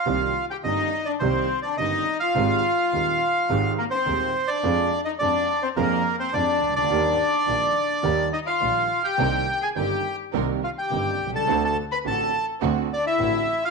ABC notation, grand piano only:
X:1
M:4/4
L:1/16
Q:1/4=105
K:Cm
V:1 name="Grand piano" clef=bass
[C,,C,E,B,CG]2 z2 [G,,,G,,E,B,CG]2 z2 [C,,C,E,B,CG]2 z2 [G,,,G,,E,B,CG]2 z2 | [A,,,A,,E,A,CG]2 z2 [E,,,E,,E,A,CG]2 z2 [A,,,A,,E,A,CG]2 z2 [E,,,E,,E,A,CG]2 z2 | [F,,F,A,DA]2 z2 [F,,F,A,DA]2 z2 [F,,F,A,DA]2 z2 [F,,F,A,DA]2 z/2 C,,/2 _D,,/2 =D,,/2 | [E,,E,G,B,G]2 z2 [B,,,B,,E,G,B,G]2 z2 [E,,E,G,B,G]2 z2 [B,,,B,,E,G,B,G]2 z2 |
[C,,C,E,B,CG]2 z2 [G,,,G,,E,B,CG]2 z2 [C,,C,E,B,CG]2 z2 [G,,,G,,E,B,CG]2 z/2 =B,,,/2 C,,/2 _D,,/2 | [D,,D,=A,C^F]2 z2 [=A,,,=A,,D,A,CF]2 z2 [D,,D,A,CF]2 z2 [A,,,A,,D,A,CF]2 z2 |]